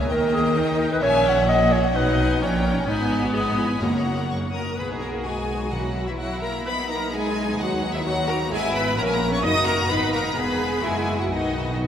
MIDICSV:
0, 0, Header, 1, 9, 480
1, 0, Start_track
1, 0, Key_signature, 5, "major"
1, 0, Tempo, 462963
1, 107, Time_signature, 2, 2, 24, 8
1, 3467, Tempo, 474308
1, 6827, Tempo, 461894
1, 10667, Tempo, 475813
1, 12191, End_track
2, 0, Start_track
2, 0, Title_t, "Violin section"
2, 0, Program_c, 0, 48
2, 0, Note_on_c, 0, 82, 74
2, 1028, Note_off_c, 0, 82, 0
2, 1057, Note_on_c, 0, 76, 81
2, 1982, Note_off_c, 0, 76, 0
2, 2012, Note_on_c, 0, 78, 85
2, 2260, Note_off_c, 0, 78, 0
2, 2267, Note_on_c, 0, 80, 81
2, 2501, Note_off_c, 0, 80, 0
2, 2505, Note_on_c, 0, 82, 76
2, 2983, Note_off_c, 0, 82, 0
2, 2983, Note_on_c, 0, 83, 77
2, 3434, Note_off_c, 0, 83, 0
2, 3469, Note_on_c, 0, 83, 74
2, 3942, Note_off_c, 0, 83, 0
2, 3944, Note_on_c, 0, 82, 67
2, 4387, Note_off_c, 0, 82, 0
2, 4432, Note_on_c, 0, 85, 68
2, 4513, Note_off_c, 0, 85, 0
2, 4666, Note_on_c, 0, 87, 60
2, 4668, Note_on_c, 0, 82, 61
2, 4900, Note_off_c, 0, 82, 0
2, 4912, Note_off_c, 0, 87, 0
2, 4921, Note_on_c, 0, 83, 65
2, 5002, Note_off_c, 0, 83, 0
2, 5155, Note_on_c, 0, 82, 62
2, 5236, Note_off_c, 0, 82, 0
2, 5382, Note_on_c, 0, 80, 71
2, 5857, Note_off_c, 0, 80, 0
2, 5870, Note_on_c, 0, 78, 63
2, 6228, Note_on_c, 0, 76, 51
2, 6230, Note_off_c, 0, 78, 0
2, 6277, Note_off_c, 0, 76, 0
2, 6351, Note_on_c, 0, 78, 74
2, 6575, Note_on_c, 0, 82, 72
2, 6585, Note_off_c, 0, 78, 0
2, 6815, Note_off_c, 0, 82, 0
2, 6819, Note_on_c, 0, 83, 97
2, 7061, Note_off_c, 0, 83, 0
2, 7073, Note_on_c, 0, 82, 83
2, 7308, Note_off_c, 0, 82, 0
2, 7320, Note_on_c, 0, 80, 95
2, 7798, Note_off_c, 0, 80, 0
2, 7799, Note_on_c, 0, 78, 88
2, 8157, Note_off_c, 0, 78, 0
2, 8178, Note_on_c, 0, 76, 78
2, 8272, Note_on_c, 0, 78, 102
2, 8286, Note_off_c, 0, 76, 0
2, 8513, Note_off_c, 0, 78, 0
2, 8528, Note_on_c, 0, 82, 87
2, 8760, Note_off_c, 0, 82, 0
2, 8764, Note_on_c, 0, 80, 110
2, 8993, Note_off_c, 0, 80, 0
2, 8997, Note_on_c, 0, 83, 92
2, 9229, Note_off_c, 0, 83, 0
2, 9234, Note_on_c, 0, 82, 100
2, 9262, Note_off_c, 0, 82, 0
2, 9301, Note_on_c, 0, 80, 91
2, 9372, Note_off_c, 0, 80, 0
2, 9382, Note_on_c, 0, 82, 96
2, 9593, Note_off_c, 0, 82, 0
2, 9600, Note_on_c, 0, 85, 80
2, 9707, Note_on_c, 0, 87, 112
2, 9712, Note_off_c, 0, 85, 0
2, 9942, Note_off_c, 0, 87, 0
2, 9951, Note_on_c, 0, 82, 108
2, 10188, Note_off_c, 0, 82, 0
2, 10206, Note_on_c, 0, 83, 101
2, 10434, Note_on_c, 0, 82, 89
2, 10435, Note_off_c, 0, 83, 0
2, 10666, Note_off_c, 0, 82, 0
2, 10682, Note_on_c, 0, 83, 92
2, 11140, Note_on_c, 0, 80, 90
2, 11150, Note_off_c, 0, 83, 0
2, 11500, Note_off_c, 0, 80, 0
2, 11514, Note_on_c, 0, 78, 52
2, 11618, Note_on_c, 0, 75, 68
2, 11628, Note_off_c, 0, 78, 0
2, 12095, Note_off_c, 0, 75, 0
2, 12191, End_track
3, 0, Start_track
3, 0, Title_t, "Clarinet"
3, 0, Program_c, 1, 71
3, 6, Note_on_c, 1, 73, 96
3, 120, Note_on_c, 1, 70, 112
3, 135, Note_off_c, 1, 73, 0
3, 359, Note_on_c, 1, 68, 101
3, 374, Note_off_c, 1, 70, 0
3, 595, Note_on_c, 1, 70, 103
3, 610, Note_off_c, 1, 68, 0
3, 951, Note_off_c, 1, 70, 0
3, 961, Note_on_c, 1, 71, 91
3, 1012, Note_off_c, 1, 71, 0
3, 1064, Note_on_c, 1, 73, 127
3, 1531, Note_off_c, 1, 73, 0
3, 1538, Note_on_c, 1, 75, 127
3, 1786, Note_on_c, 1, 73, 106
3, 1801, Note_off_c, 1, 75, 0
3, 2028, Note_on_c, 1, 71, 100
3, 2044, Note_off_c, 1, 73, 0
3, 2506, Note_off_c, 1, 71, 0
3, 2985, Note_on_c, 1, 63, 98
3, 3321, Note_off_c, 1, 63, 0
3, 3358, Note_on_c, 1, 66, 79
3, 3460, Note_on_c, 1, 68, 98
3, 3475, Note_off_c, 1, 66, 0
3, 3708, Note_on_c, 1, 64, 84
3, 3723, Note_off_c, 1, 68, 0
3, 3954, Note_on_c, 1, 66, 71
3, 3969, Note_off_c, 1, 64, 0
3, 4442, Note_off_c, 1, 66, 0
3, 12191, End_track
4, 0, Start_track
4, 0, Title_t, "Viola section"
4, 0, Program_c, 2, 48
4, 99, Note_on_c, 2, 58, 85
4, 574, Note_off_c, 2, 58, 0
4, 582, Note_on_c, 2, 63, 87
4, 1057, Note_on_c, 2, 61, 84
4, 1064, Note_off_c, 2, 63, 0
4, 1542, Note_off_c, 2, 61, 0
4, 1543, Note_on_c, 2, 58, 81
4, 2016, Note_off_c, 2, 58, 0
4, 2025, Note_on_c, 2, 63, 92
4, 2495, Note_off_c, 2, 63, 0
4, 2503, Note_on_c, 2, 61, 81
4, 2977, Note_on_c, 2, 59, 99
4, 2982, Note_off_c, 2, 61, 0
4, 3944, Note_on_c, 2, 58, 69
4, 3948, Note_off_c, 2, 59, 0
4, 4665, Note_off_c, 2, 58, 0
4, 4677, Note_on_c, 2, 70, 60
4, 4905, Note_off_c, 2, 70, 0
4, 4915, Note_on_c, 2, 71, 56
4, 5156, Note_on_c, 2, 70, 55
4, 5159, Note_off_c, 2, 71, 0
4, 5393, Note_off_c, 2, 70, 0
4, 5396, Note_on_c, 2, 68, 58
4, 5864, Note_off_c, 2, 68, 0
4, 5870, Note_on_c, 2, 66, 50
4, 6223, Note_off_c, 2, 66, 0
4, 6227, Note_on_c, 2, 64, 52
4, 6345, Note_on_c, 2, 66, 61
4, 6349, Note_off_c, 2, 64, 0
4, 6582, Note_off_c, 2, 66, 0
4, 6586, Note_on_c, 2, 70, 58
4, 6667, Note_off_c, 2, 70, 0
4, 6823, Note_on_c, 2, 71, 70
4, 6906, Note_off_c, 2, 71, 0
4, 7068, Note_on_c, 2, 70, 62
4, 7306, Note_off_c, 2, 70, 0
4, 7311, Note_on_c, 2, 68, 78
4, 7783, Note_off_c, 2, 68, 0
4, 7788, Note_on_c, 2, 66, 72
4, 8144, Note_off_c, 2, 66, 0
4, 8145, Note_on_c, 2, 64, 73
4, 8195, Note_off_c, 2, 64, 0
4, 8268, Note_on_c, 2, 66, 82
4, 8352, Note_off_c, 2, 66, 0
4, 8511, Note_on_c, 2, 70, 80
4, 8594, Note_off_c, 2, 70, 0
4, 8751, Note_on_c, 2, 68, 85
4, 8834, Note_off_c, 2, 68, 0
4, 8987, Note_on_c, 2, 71, 86
4, 9224, Note_off_c, 2, 71, 0
4, 9226, Note_on_c, 2, 70, 81
4, 9583, Note_on_c, 2, 73, 83
4, 9586, Note_off_c, 2, 70, 0
4, 9699, Note_on_c, 2, 75, 113
4, 9703, Note_off_c, 2, 73, 0
4, 9943, Note_off_c, 2, 75, 0
4, 9943, Note_on_c, 2, 70, 84
4, 10179, Note_off_c, 2, 70, 0
4, 10181, Note_on_c, 2, 71, 93
4, 10418, Note_off_c, 2, 71, 0
4, 10424, Note_on_c, 2, 70, 80
4, 10660, Note_on_c, 2, 71, 75
4, 10661, Note_off_c, 2, 70, 0
4, 11139, Note_off_c, 2, 71, 0
4, 11139, Note_on_c, 2, 68, 75
4, 11500, Note_off_c, 2, 68, 0
4, 11503, Note_on_c, 2, 66, 55
4, 11621, Note_on_c, 2, 63, 64
4, 11623, Note_off_c, 2, 66, 0
4, 12096, Note_off_c, 2, 63, 0
4, 12191, End_track
5, 0, Start_track
5, 0, Title_t, "Cello section"
5, 0, Program_c, 3, 48
5, 0, Note_on_c, 3, 49, 61
5, 104, Note_on_c, 3, 51, 75
5, 105, Note_off_c, 3, 49, 0
5, 1046, Note_off_c, 3, 51, 0
5, 1063, Note_on_c, 3, 46, 83
5, 1984, Note_off_c, 3, 46, 0
5, 2025, Note_on_c, 3, 47, 77
5, 2504, Note_off_c, 3, 47, 0
5, 2505, Note_on_c, 3, 46, 72
5, 2973, Note_off_c, 3, 46, 0
5, 2981, Note_on_c, 3, 44, 75
5, 3910, Note_off_c, 3, 44, 0
5, 3946, Note_on_c, 3, 42, 64
5, 4716, Note_off_c, 3, 42, 0
5, 4921, Note_on_c, 3, 68, 58
5, 5367, Note_off_c, 3, 68, 0
5, 5399, Note_on_c, 3, 66, 46
5, 6349, Note_on_c, 3, 64, 49
5, 6350, Note_off_c, 3, 66, 0
5, 6817, Note_off_c, 3, 64, 0
5, 6827, Note_on_c, 3, 63, 57
5, 8274, Note_off_c, 3, 63, 0
5, 8282, Note_on_c, 3, 66, 72
5, 8748, Note_off_c, 3, 66, 0
5, 8761, Note_on_c, 3, 64, 82
5, 9225, Note_off_c, 3, 64, 0
5, 9226, Note_on_c, 3, 61, 70
5, 9696, Note_off_c, 3, 61, 0
5, 9707, Note_on_c, 3, 66, 82
5, 10186, Note_off_c, 3, 66, 0
5, 10187, Note_on_c, 3, 63, 72
5, 10667, Note_off_c, 3, 63, 0
5, 10667, Note_on_c, 3, 68, 74
5, 11133, Note_off_c, 3, 68, 0
5, 11142, Note_on_c, 3, 64, 69
5, 11622, Note_off_c, 3, 64, 0
5, 11622, Note_on_c, 3, 63, 53
5, 12191, Note_off_c, 3, 63, 0
5, 12191, End_track
6, 0, Start_track
6, 0, Title_t, "Violin section"
6, 0, Program_c, 4, 48
6, 106, Note_on_c, 4, 75, 81
6, 109, Note_on_c, 4, 79, 76
6, 1025, Note_off_c, 4, 75, 0
6, 1026, Note_off_c, 4, 79, 0
6, 1060, Note_on_c, 4, 76, 74
6, 1064, Note_on_c, 4, 80, 90
6, 1288, Note_off_c, 4, 80, 0
6, 1307, Note_on_c, 4, 78, 83
6, 1509, Note_off_c, 4, 76, 0
6, 1541, Note_off_c, 4, 78, 0
6, 1553, Note_on_c, 4, 78, 71
6, 2021, Note_off_c, 4, 78, 0
6, 2033, Note_on_c, 4, 75, 83
6, 2034, Note_on_c, 4, 78, 74
6, 2499, Note_off_c, 4, 78, 0
6, 2508, Note_off_c, 4, 75, 0
6, 2509, Note_on_c, 4, 73, 68
6, 2512, Note_on_c, 4, 79, 71
6, 2977, Note_off_c, 4, 79, 0
6, 2985, Note_off_c, 4, 73, 0
6, 2990, Note_on_c, 4, 75, 69
6, 2990, Note_on_c, 4, 80, 69
6, 3437, Note_off_c, 4, 75, 0
6, 3437, Note_off_c, 4, 80, 0
6, 3476, Note_on_c, 4, 80, 63
6, 3477, Note_on_c, 4, 75, 58
6, 3946, Note_off_c, 4, 75, 0
6, 3946, Note_off_c, 4, 80, 0
6, 3956, Note_on_c, 4, 73, 63
6, 3956, Note_on_c, 4, 78, 70
6, 4706, Note_off_c, 4, 73, 0
6, 4722, Note_off_c, 4, 78, 0
6, 4917, Note_on_c, 4, 59, 46
6, 4918, Note_on_c, 4, 66, 48
6, 5032, Note_off_c, 4, 59, 0
6, 5047, Note_on_c, 4, 63, 43
6, 5165, Note_off_c, 4, 63, 0
6, 5167, Note_on_c, 4, 59, 38
6, 5285, Note_off_c, 4, 59, 0
6, 5287, Note_on_c, 4, 63, 38
6, 5404, Note_off_c, 4, 63, 0
6, 5405, Note_on_c, 4, 59, 37
6, 5522, Note_off_c, 4, 59, 0
6, 5531, Note_on_c, 4, 63, 34
6, 5644, Note_off_c, 4, 63, 0
6, 5652, Note_on_c, 4, 59, 35
6, 5760, Note_on_c, 4, 63, 42
6, 5764, Note_off_c, 4, 59, 0
6, 5833, Note_off_c, 4, 66, 0
6, 5878, Note_off_c, 4, 63, 0
6, 5884, Note_on_c, 4, 64, 59
6, 5885, Note_on_c, 4, 58, 53
6, 5992, Note_off_c, 4, 58, 0
6, 6007, Note_on_c, 4, 58, 40
6, 6107, Note_off_c, 4, 58, 0
6, 6119, Note_on_c, 4, 58, 46
6, 6224, Note_off_c, 4, 58, 0
6, 6236, Note_on_c, 4, 58, 40
6, 6345, Note_off_c, 4, 58, 0
6, 6357, Note_on_c, 4, 58, 40
6, 6467, Note_off_c, 4, 58, 0
6, 6480, Note_on_c, 4, 58, 47
6, 6587, Note_off_c, 4, 58, 0
6, 6599, Note_on_c, 4, 58, 42
6, 6708, Note_off_c, 4, 58, 0
6, 6720, Note_on_c, 4, 58, 47
6, 6833, Note_off_c, 4, 58, 0
6, 6841, Note_on_c, 4, 59, 53
6, 6940, Note_off_c, 4, 59, 0
6, 6952, Note_on_c, 4, 59, 56
6, 7072, Note_off_c, 4, 59, 0
6, 7083, Note_on_c, 4, 59, 52
6, 7190, Note_off_c, 4, 59, 0
6, 7202, Note_on_c, 4, 59, 51
6, 7310, Note_off_c, 4, 59, 0
6, 7322, Note_on_c, 4, 59, 49
6, 7431, Note_off_c, 4, 59, 0
6, 7444, Note_on_c, 4, 59, 52
6, 7549, Note_off_c, 4, 59, 0
6, 7561, Note_on_c, 4, 59, 43
6, 7662, Note_off_c, 4, 59, 0
6, 7675, Note_on_c, 4, 59, 52
6, 7787, Note_off_c, 4, 59, 0
6, 7797, Note_off_c, 4, 64, 0
6, 7798, Note_on_c, 4, 63, 62
6, 7799, Note_on_c, 4, 59, 68
6, 7905, Note_off_c, 4, 59, 0
6, 7918, Note_on_c, 4, 59, 56
6, 8026, Note_off_c, 4, 59, 0
6, 8039, Note_on_c, 4, 59, 65
6, 8147, Note_off_c, 4, 59, 0
6, 8159, Note_on_c, 4, 59, 60
6, 8271, Note_off_c, 4, 59, 0
6, 8284, Note_on_c, 4, 59, 62
6, 8392, Note_off_c, 4, 59, 0
6, 8404, Note_on_c, 4, 59, 53
6, 8504, Note_off_c, 4, 59, 0
6, 8517, Note_on_c, 4, 59, 60
6, 8631, Note_off_c, 4, 59, 0
6, 8643, Note_on_c, 4, 59, 62
6, 8739, Note_off_c, 4, 59, 0
6, 8751, Note_on_c, 4, 59, 76
6, 8751, Note_on_c, 4, 64, 70
6, 8756, Note_off_c, 4, 63, 0
6, 9196, Note_off_c, 4, 59, 0
6, 9196, Note_off_c, 4, 64, 0
6, 9222, Note_on_c, 4, 64, 62
6, 9227, Note_on_c, 4, 61, 59
6, 9462, Note_off_c, 4, 61, 0
6, 9465, Note_on_c, 4, 59, 59
6, 9694, Note_off_c, 4, 64, 0
6, 9702, Note_on_c, 4, 63, 72
6, 9703, Note_on_c, 4, 58, 76
6, 9706, Note_off_c, 4, 59, 0
6, 10166, Note_off_c, 4, 63, 0
6, 10178, Note_on_c, 4, 59, 63
6, 10178, Note_on_c, 4, 63, 62
6, 10184, Note_off_c, 4, 58, 0
6, 10645, Note_off_c, 4, 59, 0
6, 10653, Note_off_c, 4, 63, 0
6, 10657, Note_on_c, 4, 59, 73
6, 10660, Note_on_c, 4, 68, 66
6, 11128, Note_off_c, 4, 59, 0
6, 11133, Note_on_c, 4, 58, 55
6, 11135, Note_on_c, 4, 66, 53
6, 11139, Note_off_c, 4, 68, 0
6, 11603, Note_off_c, 4, 66, 0
6, 11615, Note_on_c, 4, 59, 60
6, 11615, Note_on_c, 4, 66, 62
6, 11617, Note_off_c, 4, 58, 0
6, 12191, Note_off_c, 4, 59, 0
6, 12191, Note_off_c, 4, 66, 0
6, 12191, End_track
7, 0, Start_track
7, 0, Title_t, "French horn section"
7, 0, Program_c, 5, 60
7, 4678, Note_on_c, 5, 58, 52
7, 4788, Note_off_c, 5, 58, 0
7, 4930, Note_on_c, 5, 59, 53
7, 5162, Note_off_c, 5, 59, 0
7, 5172, Note_on_c, 5, 58, 53
7, 5401, Note_off_c, 5, 58, 0
7, 5408, Note_on_c, 5, 56, 57
7, 5879, Note_off_c, 5, 56, 0
7, 5879, Note_on_c, 5, 54, 49
7, 6232, Note_on_c, 5, 52, 54
7, 6234, Note_off_c, 5, 54, 0
7, 6352, Note_off_c, 5, 52, 0
7, 6352, Note_on_c, 5, 54, 60
7, 6459, Note_off_c, 5, 54, 0
7, 6601, Note_on_c, 5, 58, 57
7, 6828, Note_off_c, 5, 58, 0
7, 6834, Note_on_c, 5, 59, 64
7, 7069, Note_on_c, 5, 58, 65
7, 7073, Note_off_c, 5, 59, 0
7, 7311, Note_off_c, 5, 58, 0
7, 7315, Note_on_c, 5, 56, 80
7, 7785, Note_off_c, 5, 56, 0
7, 7797, Note_on_c, 5, 54, 58
7, 8149, Note_off_c, 5, 54, 0
7, 8151, Note_on_c, 5, 52, 70
7, 8270, Note_off_c, 5, 52, 0
7, 8277, Note_on_c, 5, 54, 92
7, 8509, Note_on_c, 5, 58, 80
7, 8511, Note_off_c, 5, 54, 0
7, 8750, Note_on_c, 5, 56, 74
7, 8751, Note_off_c, 5, 58, 0
7, 8981, Note_on_c, 5, 59, 82
7, 8991, Note_off_c, 5, 56, 0
7, 9220, Note_off_c, 5, 59, 0
7, 9220, Note_on_c, 5, 58, 87
7, 9576, Note_off_c, 5, 58, 0
7, 9587, Note_on_c, 5, 61, 71
7, 9705, Note_on_c, 5, 63, 87
7, 9708, Note_off_c, 5, 61, 0
7, 9813, Note_off_c, 5, 63, 0
7, 9939, Note_on_c, 5, 58, 80
7, 10048, Note_off_c, 5, 58, 0
7, 10179, Note_on_c, 5, 59, 90
7, 10407, Note_on_c, 5, 58, 83
7, 10417, Note_off_c, 5, 59, 0
7, 10520, Note_off_c, 5, 58, 0
7, 10665, Note_on_c, 5, 59, 64
7, 11132, Note_off_c, 5, 59, 0
7, 11148, Note_on_c, 5, 56, 79
7, 11497, Note_off_c, 5, 56, 0
7, 11503, Note_on_c, 5, 54, 44
7, 11621, Note_on_c, 5, 51, 51
7, 11622, Note_off_c, 5, 54, 0
7, 12106, Note_off_c, 5, 51, 0
7, 12191, End_track
8, 0, Start_track
8, 0, Title_t, "Timpani"
8, 0, Program_c, 6, 47
8, 3945, Note_on_c, 6, 42, 83
8, 4640, Note_off_c, 6, 42, 0
8, 4923, Note_on_c, 6, 47, 54
8, 5598, Note_off_c, 6, 47, 0
8, 5875, Note_on_c, 6, 47, 64
8, 6549, Note_off_c, 6, 47, 0
8, 9707, Note_on_c, 6, 42, 73
8, 10152, Note_off_c, 6, 42, 0
8, 11619, Note_on_c, 6, 47, 31
8, 11682, Note_off_c, 6, 47, 0
8, 11694, Note_on_c, 6, 47, 34
8, 11756, Note_off_c, 6, 47, 0
8, 11768, Note_on_c, 6, 47, 36
8, 11838, Note_off_c, 6, 47, 0
8, 11850, Note_on_c, 6, 47, 40
8, 11911, Note_off_c, 6, 47, 0
8, 11923, Note_on_c, 6, 47, 44
8, 11993, Note_off_c, 6, 47, 0
8, 12005, Note_on_c, 6, 47, 53
8, 12066, Note_off_c, 6, 47, 0
8, 12079, Note_on_c, 6, 47, 50
8, 12147, Note_off_c, 6, 47, 0
8, 12159, Note_on_c, 6, 47, 67
8, 12191, Note_off_c, 6, 47, 0
8, 12191, End_track
9, 0, Start_track
9, 0, Title_t, "Double bass section"
9, 0, Program_c, 7, 48
9, 0, Note_on_c, 7, 37, 73
9, 109, Note_off_c, 7, 37, 0
9, 113, Note_on_c, 7, 39, 73
9, 1051, Note_off_c, 7, 39, 0
9, 1067, Note_on_c, 7, 34, 84
9, 1986, Note_off_c, 7, 34, 0
9, 2030, Note_on_c, 7, 35, 80
9, 2507, Note_off_c, 7, 35, 0
9, 2509, Note_on_c, 7, 34, 79
9, 2975, Note_off_c, 7, 34, 0
9, 2987, Note_on_c, 7, 32, 74
9, 3912, Note_off_c, 7, 32, 0
9, 3950, Note_on_c, 7, 30, 64
9, 4719, Note_off_c, 7, 30, 0
9, 4922, Note_on_c, 7, 35, 46
9, 6786, Note_off_c, 7, 35, 0
9, 6836, Note_on_c, 7, 35, 59
9, 7778, Note_off_c, 7, 35, 0
9, 7795, Note_on_c, 7, 39, 73
9, 8754, Note_off_c, 7, 39, 0
9, 8756, Note_on_c, 7, 32, 68
9, 9199, Note_off_c, 7, 32, 0
9, 9235, Note_on_c, 7, 34, 77
9, 9710, Note_off_c, 7, 34, 0
9, 9715, Note_on_c, 7, 30, 76
9, 10190, Note_off_c, 7, 30, 0
9, 10190, Note_on_c, 7, 32, 67
9, 10665, Note_on_c, 7, 28, 62
9, 10669, Note_off_c, 7, 32, 0
9, 11141, Note_off_c, 7, 28, 0
9, 11142, Note_on_c, 7, 30, 57
9, 11621, Note_off_c, 7, 30, 0
9, 11624, Note_on_c, 7, 35, 54
9, 12191, Note_off_c, 7, 35, 0
9, 12191, End_track
0, 0, End_of_file